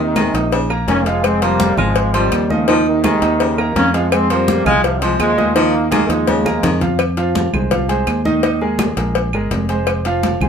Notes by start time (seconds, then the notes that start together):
Already playing: D#2 D#3 D#4 D#5
0.00 C3 D#3
0.16 D#3 G#3 G#4 G#5, cowbell, high conga, claves
0.34 A#1 D#4 D#5 D#6, cowbell, high conga
0.52 C#3, cowbell, high conga
0.70 A#3 A#4 A#5, high conga, claves
0.88 F1 D#3 A#3 C#4, cowbell, high conga
1.06 F3 G#3 F4 F5, cowbell, high conga
1.24 G#3 C4 G#4 G#5, cowbell, high conga, claves
1.42 F3 G3 A#3 C4 C5 C6, cowbell, high conga
1.60 cowbell, high conga
1.77 G#1 F3 G#3 F4 F5 F6, high conga, low conga, claves
1.96 cowbell, high conga
2.14 D#3 F3 G3 C4 C5 C6, cowbell, high conga
2.32 D#2, cowbell, high conga, claves
2.50 C#3 D#3 F3 D#4 D#5, high conga
2.68 A#2 D#3 F3 D#4 D#5, cowbell, high conga
2.86 C3 D#3, high conga
3.04 D#3 G#3 G#4 G#5, cowbell, high conga, claves
3.22 D#2 D#4 D#5 D#6, cowbell, high conga
3.40 C#3, cowbell, high conga
3.58 A#3 A#4 A#5, high conga, claves
3.76 F2 D#3 A#3 C#4, cowbell, high conga
3.94 F3 G#3 F4 F5, cowbell, high conga
4.12 G#3 C4 G#4 G#5, cowbell, claves
4.30 F3 G3 A#3 C4 C5 C6, cowbell, high conga
4.48 cowbell, high conga
4.66 C2 F3 G#3 F4 F5 F6, high conga, low conga, claves
4.84 C3 F3, cowbell, high conga
5.01 F3 G#3 C4 C5 C6, cowbell, high conga
5.19 D#2 F3 G#3, cowbell, high conga, claves
5.37 D#3 D#4 D#5, high conga
5.55 D#3 F3 A#3 D#4 D#5, cowbell, high conga
5.74 high conga
5.91 D#3 G#3 A#3 G#4 G#5, cowbell, high conga, claves
6.09 D#2 F3 G#3 D#4 D#5 D#6, cowbell, high conga
6.27 C#3, cowbell, high conga
6.45 A#3 A#4 A#5, high conga, claves
6.63 F2 D#3, cowbell, low conga
6.81 F3 F4 F5, cowbell, low conga
6.99 cowbell, high conga, claves
7.17 F3 F4 F5, cowbell, high conga
7.35 cowbell, high conga
7.53 C2 G#3 G#4 C5, high conga, low conga, claves
7.71 F3 F4 F5, cowbell, high conga, low conga
7.89 G#3 G#4 C5, cowbell, high conga
8.07 D#2, cowbell, high conga, claves
8.25 D#3 D#4 D#5, high conga
8.43 D#3 D#4 D#5, cowbell, high conga
8.61 G#3 G#4 A#4, high conga
8.79 cowbell, high conga, claves
8.97 A#1 G#3 G#4 A#4, cowbell, high conga
9.15 cowbell, high conga
9.33 G1 G#3 G#4 A#4, high conga, claves
9.51 F1, cowbell, high conga
9.69 G#3 G#4 C5, cowbell, high conga
9.87 cowbell, high conga, claves
10.05 F3 F4 F5, cowbell, high conga
10.23 cowbell, high conga
10.40 C2 G#3 G#4 C5, high conga, low conga, claves